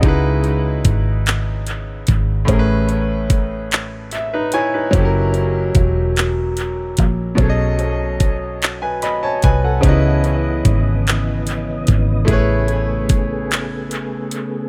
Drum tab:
HH |xxxxxx|xxxxxx|xxxxxx|xxxxxx|
CP |---x--|---x--|---x--|---x--|
BD |o-o--o|o-o---|o-o--o|o-o--o|

HH |xxxxxx|xxxxxx|
CP |---x--|---x--|
BD |o-o--o|o-o---|